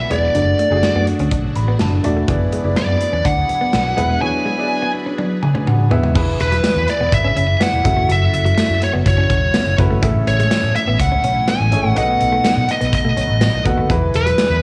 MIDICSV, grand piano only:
0, 0, Header, 1, 2, 480
1, 0, Start_track
1, 0, Tempo, 483871
1, 347, Time_signature, 4, 2, 24, 8
1, 14503, End_track
2, 0, Start_track
2, 0, Title_t, "Grand piano"
2, 0, Program_c, 0, 0
2, 0, Control_c, 0, 64, 127
2, 0, Note_on_c, 0, 59, 65
2, 0, Note_on_c, 0, 64, 62
2, 0, Note_on_c, 0, 68, 58
2, 0, Note_on_c, 0, 74, 70
2, 99, Note_off_c, 0, 59, 0
2, 99, Note_on_c, 0, 59, 66
2, 102, Note_off_c, 0, 64, 0
2, 102, Note_on_c, 0, 64, 62
2, 107, Note_off_c, 0, 68, 0
2, 107, Note_on_c, 0, 68, 64
2, 109, Note_off_c, 0, 74, 0
2, 109, Note_on_c, 0, 74, 79
2, 319, Note_off_c, 0, 59, 0
2, 320, Note_off_c, 0, 64, 0
2, 322, Note_off_c, 0, 68, 0
2, 323, Note_off_c, 0, 74, 0
2, 341, Note_on_c, 0, 57, 72
2, 346, Note_on_c, 0, 62, 63
2, 350, Note_on_c, 0, 66, 63
2, 353, Note_on_c, 0, 74, 80
2, 359, Control_c, 0, 64, 0
2, 503, Control_c, 0, 64, 127
2, 667, Note_off_c, 0, 57, 0
2, 670, Note_off_c, 0, 62, 0
2, 672, Note_off_c, 0, 66, 0
2, 673, Note_off_c, 0, 74, 0
2, 697, Note_on_c, 0, 57, 82
2, 700, Note_on_c, 0, 62, 71
2, 706, Note_on_c, 0, 66, 75
2, 710, Note_on_c, 0, 68, 90
2, 1545, Note_on_c, 0, 83, 71
2, 1564, Note_off_c, 0, 57, 0
2, 1566, Note_off_c, 0, 62, 0
2, 1568, Note_off_c, 0, 66, 0
2, 1570, Note_off_c, 0, 68, 0
2, 1769, Note_off_c, 0, 83, 0
2, 1784, Note_on_c, 0, 81, 70
2, 2009, Note_off_c, 0, 81, 0
2, 2016, Note_on_c, 0, 57, 82
2, 2021, Note_on_c, 0, 62, 80
2, 2022, Note_on_c, 0, 76, 66
2, 2025, Note_on_c, 0, 66, 77
2, 2027, Note_on_c, 0, 74, 95
2, 2237, Note_off_c, 0, 57, 0
2, 2239, Note_off_c, 0, 62, 0
2, 2242, Note_off_c, 0, 66, 0
2, 2243, Note_off_c, 0, 74, 0
2, 2247, Note_off_c, 0, 76, 0
2, 2259, Note_on_c, 0, 59, 88
2, 2263, Note_on_c, 0, 64, 78
2, 2267, Note_on_c, 0, 68, 78
2, 2272, Note_on_c, 0, 74, 95
2, 2281, Control_c, 0, 64, 0
2, 2470, Control_c, 0, 64, 127
2, 2586, Note_off_c, 0, 59, 0
2, 2588, Note_off_c, 0, 64, 0
2, 2590, Note_off_c, 0, 68, 0
2, 2592, Note_off_c, 0, 74, 0
2, 2618, Note_on_c, 0, 59, 68
2, 2623, Note_on_c, 0, 64, 67
2, 2628, Note_on_c, 0, 68, 62
2, 2632, Note_on_c, 0, 74, 76
2, 3484, Note_off_c, 0, 59, 0
2, 3487, Note_off_c, 0, 64, 0
2, 3489, Note_off_c, 0, 68, 0
2, 3491, Note_off_c, 0, 74, 0
2, 3940, Note_on_c, 0, 59, 85
2, 3944, Note_on_c, 0, 64, 79
2, 3948, Note_on_c, 0, 68, 76
2, 3949, Note_on_c, 0, 71, 89
2, 4159, Note_off_c, 0, 59, 0
2, 4161, Note_off_c, 0, 64, 0
2, 4163, Note_off_c, 0, 68, 0
2, 4164, Note_off_c, 0, 71, 0
2, 4176, Note_on_c, 0, 59, 70
2, 4181, Note_on_c, 0, 64, 69
2, 4185, Note_on_c, 0, 68, 70
2, 4189, Note_on_c, 0, 73, 79
2, 4505, Note_off_c, 0, 59, 0
2, 4507, Note_off_c, 0, 64, 0
2, 4509, Note_off_c, 0, 68, 0
2, 4511, Note_off_c, 0, 73, 0
2, 4539, Note_on_c, 0, 59, 73
2, 4544, Note_on_c, 0, 64, 66
2, 4545, Note_on_c, 0, 68, 63
2, 4551, Note_on_c, 0, 74, 76
2, 5382, Note_on_c, 0, 80, 69
2, 5405, Note_off_c, 0, 59, 0
2, 5407, Note_off_c, 0, 64, 0
2, 5408, Note_off_c, 0, 68, 0
2, 5411, Note_off_c, 0, 74, 0
2, 5607, Note_off_c, 0, 80, 0
2, 5625, Note_on_c, 0, 78, 70
2, 5857, Note_on_c, 0, 59, 87
2, 5862, Note_on_c, 0, 64, 77
2, 5866, Note_on_c, 0, 68, 75
2, 5869, Note_on_c, 0, 76, 94
2, 6072, Note_off_c, 0, 78, 0
2, 6078, Note_off_c, 0, 59, 0
2, 6080, Note_off_c, 0, 64, 0
2, 6082, Note_off_c, 0, 68, 0
2, 6084, Note_off_c, 0, 76, 0
2, 6096, Note_on_c, 0, 64, 88
2, 6103, Note_on_c, 0, 52, 77
2, 6103, Note_on_c, 0, 68, 81
2, 6108, Note_on_c, 0, 71, 95
2, 6119, Control_c, 0, 64, 0
2, 6287, Control_c, 0, 64, 127
2, 6785, Note_off_c, 0, 52, 0
2, 6963, Note_off_c, 0, 64, 0
2, 6967, Note_off_c, 0, 68, 0
2, 6969, Note_off_c, 0, 71, 0
2, 7779, Note_on_c, 0, 61, 79
2, 7781, Note_on_c, 0, 64, 69
2, 7785, Note_on_c, 0, 66, 76
2, 7787, Note_on_c, 0, 69, 70
2, 7792, Note_on_c, 0, 76, 80
2, 7802, Control_c, 0, 64, 0
2, 7995, Control_c, 0, 64, 127
2, 8645, Note_off_c, 0, 61, 0
2, 8646, Note_off_c, 0, 64, 0
2, 8648, Note_off_c, 0, 66, 0
2, 8649, Note_off_c, 0, 69, 0
2, 8651, Note_off_c, 0, 76, 0
2, 9703, Note_on_c, 0, 61, 94
2, 9705, Note_on_c, 0, 64, 80
2, 9707, Note_on_c, 0, 66, 84
2, 9711, Note_on_c, 0, 69, 80
2, 9712, Note_on_c, 0, 71, 99
2, 9920, Note_off_c, 0, 61, 0
2, 9922, Note_off_c, 0, 64, 0
2, 9923, Note_off_c, 0, 66, 0
2, 9925, Note_off_c, 0, 69, 0
2, 9925, Note_off_c, 0, 71, 0
2, 9938, Note_on_c, 0, 61, 92
2, 9941, Note_on_c, 0, 64, 85
2, 9944, Note_on_c, 0, 45, 80
2, 9945, Note_on_c, 0, 68, 84
2, 9947, Note_on_c, 0, 69, 85
2, 9951, Note_on_c, 0, 76, 101
2, 9958, Control_c, 0, 64, 0
2, 10152, Control_c, 0, 64, 127
2, 10626, Note_off_c, 0, 45, 0
2, 10804, Note_off_c, 0, 61, 0
2, 10806, Note_off_c, 0, 64, 0
2, 10808, Note_off_c, 0, 68, 0
2, 10809, Note_off_c, 0, 69, 0
2, 10811, Note_off_c, 0, 76, 0
2, 11622, Note_on_c, 0, 61, 77
2, 11623, Note_on_c, 0, 64, 68
2, 11626, Note_on_c, 0, 68, 67
2, 11631, Note_on_c, 0, 69, 67
2, 11632, Note_on_c, 0, 73, 83
2, 11840, Note_off_c, 0, 61, 0
2, 11841, Note_off_c, 0, 64, 0
2, 11842, Note_off_c, 0, 68, 0
2, 11844, Note_off_c, 0, 69, 0
2, 11845, Note_off_c, 0, 73, 0
2, 11858, Note_on_c, 0, 59, 77
2, 11861, Note_on_c, 0, 63, 68
2, 11864, Note_on_c, 0, 66, 72
2, 11866, Note_on_c, 0, 47, 70
2, 11867, Note_on_c, 0, 69, 75
2, 11872, Note_on_c, 0, 75, 90
2, 11882, Control_c, 0, 64, 0
2, 12054, Control_c, 0, 64, 127
2, 12547, Note_off_c, 0, 47, 0
2, 12724, Note_off_c, 0, 59, 0
2, 12726, Note_off_c, 0, 63, 0
2, 12727, Note_off_c, 0, 66, 0
2, 12729, Note_off_c, 0, 69, 0
2, 12731, Note_off_c, 0, 75, 0
2, 13539, Note_on_c, 0, 59, 86
2, 13543, Note_on_c, 0, 63, 78
2, 13547, Note_on_c, 0, 66, 81
2, 13549, Note_on_c, 0, 69, 77
2, 13552, Note_on_c, 0, 78, 94
2, 13759, Note_off_c, 0, 59, 0
2, 13761, Note_off_c, 0, 63, 0
2, 13762, Note_off_c, 0, 66, 0
2, 13763, Note_off_c, 0, 69, 0
2, 13765, Note_off_c, 0, 78, 0
2, 13782, Note_on_c, 0, 64, 93
2, 13788, Note_on_c, 0, 52, 77
2, 13788, Note_on_c, 0, 68, 81
2, 13794, Note_on_c, 0, 71, 105
2, 13799, Control_c, 0, 64, 0
2, 13953, Control_c, 0, 64, 127
2, 14468, Note_off_c, 0, 52, 0
2, 14503, Note_off_c, 0, 64, 0
2, 14503, Note_off_c, 0, 68, 0
2, 14503, Note_off_c, 0, 71, 0
2, 14503, End_track
0, 0, End_of_file